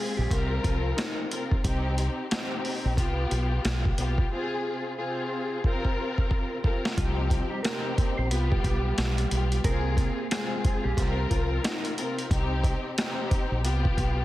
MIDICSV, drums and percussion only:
0, 0, Header, 1, 2, 480
1, 0, Start_track
1, 0, Key_signature, -3, "minor"
1, 0, Tempo, 666667
1, 1182, Time_signature, 4, 2, 24, 8
1, 10258, End_track
2, 0, Start_track
2, 0, Title_t, "Drums"
2, 221, Note_on_c, 9, 36, 97
2, 225, Note_on_c, 9, 42, 92
2, 227, Note_on_c, 9, 38, 34
2, 293, Note_off_c, 9, 36, 0
2, 297, Note_off_c, 9, 42, 0
2, 299, Note_off_c, 9, 38, 0
2, 463, Note_on_c, 9, 36, 95
2, 464, Note_on_c, 9, 42, 71
2, 535, Note_off_c, 9, 36, 0
2, 536, Note_off_c, 9, 42, 0
2, 705, Note_on_c, 9, 42, 88
2, 709, Note_on_c, 9, 38, 110
2, 714, Note_on_c, 9, 37, 85
2, 777, Note_off_c, 9, 42, 0
2, 781, Note_off_c, 9, 38, 0
2, 786, Note_off_c, 9, 37, 0
2, 947, Note_on_c, 9, 42, 81
2, 1019, Note_off_c, 9, 42, 0
2, 1091, Note_on_c, 9, 36, 89
2, 1163, Note_off_c, 9, 36, 0
2, 1183, Note_on_c, 9, 36, 112
2, 1185, Note_on_c, 9, 42, 95
2, 1255, Note_off_c, 9, 36, 0
2, 1257, Note_off_c, 9, 42, 0
2, 1425, Note_on_c, 9, 42, 73
2, 1497, Note_off_c, 9, 42, 0
2, 1665, Note_on_c, 9, 42, 103
2, 1669, Note_on_c, 9, 38, 116
2, 1674, Note_on_c, 9, 37, 90
2, 1737, Note_off_c, 9, 42, 0
2, 1741, Note_off_c, 9, 38, 0
2, 1746, Note_off_c, 9, 37, 0
2, 1907, Note_on_c, 9, 46, 53
2, 1979, Note_off_c, 9, 46, 0
2, 2141, Note_on_c, 9, 36, 94
2, 2146, Note_on_c, 9, 42, 98
2, 2213, Note_off_c, 9, 36, 0
2, 2218, Note_off_c, 9, 42, 0
2, 2385, Note_on_c, 9, 42, 68
2, 2457, Note_off_c, 9, 42, 0
2, 2626, Note_on_c, 9, 42, 85
2, 2630, Note_on_c, 9, 38, 104
2, 2635, Note_on_c, 9, 37, 88
2, 2698, Note_off_c, 9, 42, 0
2, 2702, Note_off_c, 9, 38, 0
2, 2707, Note_off_c, 9, 37, 0
2, 2774, Note_on_c, 9, 36, 93
2, 2846, Note_off_c, 9, 36, 0
2, 2866, Note_on_c, 9, 42, 79
2, 2938, Note_off_c, 9, 42, 0
2, 3010, Note_on_c, 9, 36, 91
2, 3082, Note_off_c, 9, 36, 0
2, 4062, Note_on_c, 9, 36, 61
2, 4134, Note_off_c, 9, 36, 0
2, 4210, Note_on_c, 9, 36, 55
2, 4282, Note_off_c, 9, 36, 0
2, 4450, Note_on_c, 9, 36, 67
2, 4522, Note_off_c, 9, 36, 0
2, 4542, Note_on_c, 9, 36, 83
2, 4614, Note_off_c, 9, 36, 0
2, 4782, Note_on_c, 9, 36, 103
2, 4854, Note_off_c, 9, 36, 0
2, 4934, Note_on_c, 9, 38, 92
2, 5006, Note_off_c, 9, 38, 0
2, 5022, Note_on_c, 9, 36, 114
2, 5023, Note_on_c, 9, 42, 96
2, 5094, Note_off_c, 9, 36, 0
2, 5095, Note_off_c, 9, 42, 0
2, 5259, Note_on_c, 9, 36, 98
2, 5264, Note_on_c, 9, 42, 75
2, 5331, Note_off_c, 9, 36, 0
2, 5336, Note_off_c, 9, 42, 0
2, 5505, Note_on_c, 9, 42, 106
2, 5509, Note_on_c, 9, 38, 116
2, 5514, Note_on_c, 9, 37, 93
2, 5577, Note_off_c, 9, 42, 0
2, 5581, Note_off_c, 9, 38, 0
2, 5586, Note_off_c, 9, 37, 0
2, 5745, Note_on_c, 9, 36, 112
2, 5746, Note_on_c, 9, 42, 75
2, 5817, Note_off_c, 9, 36, 0
2, 5818, Note_off_c, 9, 42, 0
2, 5984, Note_on_c, 9, 42, 101
2, 6056, Note_off_c, 9, 42, 0
2, 6133, Note_on_c, 9, 36, 92
2, 6205, Note_off_c, 9, 36, 0
2, 6222, Note_on_c, 9, 36, 96
2, 6224, Note_on_c, 9, 42, 71
2, 6294, Note_off_c, 9, 36, 0
2, 6296, Note_off_c, 9, 42, 0
2, 6464, Note_on_c, 9, 42, 90
2, 6468, Note_on_c, 9, 38, 109
2, 6473, Note_on_c, 9, 37, 93
2, 6536, Note_off_c, 9, 42, 0
2, 6540, Note_off_c, 9, 38, 0
2, 6545, Note_off_c, 9, 37, 0
2, 6610, Note_on_c, 9, 42, 61
2, 6682, Note_off_c, 9, 42, 0
2, 6706, Note_on_c, 9, 42, 81
2, 6778, Note_off_c, 9, 42, 0
2, 6853, Note_on_c, 9, 42, 54
2, 6925, Note_off_c, 9, 42, 0
2, 6943, Note_on_c, 9, 36, 112
2, 6944, Note_on_c, 9, 42, 101
2, 7015, Note_off_c, 9, 36, 0
2, 7016, Note_off_c, 9, 42, 0
2, 7179, Note_on_c, 9, 36, 103
2, 7184, Note_on_c, 9, 42, 75
2, 7251, Note_off_c, 9, 36, 0
2, 7256, Note_off_c, 9, 42, 0
2, 7425, Note_on_c, 9, 42, 106
2, 7429, Note_on_c, 9, 38, 117
2, 7434, Note_on_c, 9, 37, 98
2, 7497, Note_off_c, 9, 42, 0
2, 7501, Note_off_c, 9, 38, 0
2, 7506, Note_off_c, 9, 37, 0
2, 7665, Note_on_c, 9, 36, 113
2, 7665, Note_on_c, 9, 42, 74
2, 7737, Note_off_c, 9, 36, 0
2, 7737, Note_off_c, 9, 42, 0
2, 7900, Note_on_c, 9, 36, 97
2, 7904, Note_on_c, 9, 42, 97
2, 7906, Note_on_c, 9, 38, 34
2, 7972, Note_off_c, 9, 36, 0
2, 7976, Note_off_c, 9, 42, 0
2, 7978, Note_off_c, 9, 38, 0
2, 8142, Note_on_c, 9, 36, 98
2, 8143, Note_on_c, 9, 42, 74
2, 8214, Note_off_c, 9, 36, 0
2, 8215, Note_off_c, 9, 42, 0
2, 8384, Note_on_c, 9, 42, 89
2, 8387, Note_on_c, 9, 38, 115
2, 8393, Note_on_c, 9, 37, 88
2, 8456, Note_off_c, 9, 42, 0
2, 8459, Note_off_c, 9, 38, 0
2, 8465, Note_off_c, 9, 37, 0
2, 8530, Note_on_c, 9, 42, 62
2, 8602, Note_off_c, 9, 42, 0
2, 8625, Note_on_c, 9, 42, 78
2, 8697, Note_off_c, 9, 42, 0
2, 8773, Note_on_c, 9, 42, 56
2, 8845, Note_off_c, 9, 42, 0
2, 8862, Note_on_c, 9, 36, 111
2, 8864, Note_on_c, 9, 42, 97
2, 8934, Note_off_c, 9, 36, 0
2, 8936, Note_off_c, 9, 42, 0
2, 9098, Note_on_c, 9, 36, 102
2, 9104, Note_on_c, 9, 42, 75
2, 9170, Note_off_c, 9, 36, 0
2, 9176, Note_off_c, 9, 42, 0
2, 9344, Note_on_c, 9, 42, 108
2, 9348, Note_on_c, 9, 38, 118
2, 9354, Note_on_c, 9, 37, 95
2, 9416, Note_off_c, 9, 42, 0
2, 9420, Note_off_c, 9, 38, 0
2, 9426, Note_off_c, 9, 37, 0
2, 9585, Note_on_c, 9, 36, 108
2, 9586, Note_on_c, 9, 42, 75
2, 9657, Note_off_c, 9, 36, 0
2, 9658, Note_off_c, 9, 42, 0
2, 9825, Note_on_c, 9, 42, 98
2, 9897, Note_off_c, 9, 42, 0
2, 9972, Note_on_c, 9, 36, 97
2, 10044, Note_off_c, 9, 36, 0
2, 10062, Note_on_c, 9, 36, 94
2, 10065, Note_on_c, 9, 42, 74
2, 10134, Note_off_c, 9, 36, 0
2, 10137, Note_off_c, 9, 42, 0
2, 10258, End_track
0, 0, End_of_file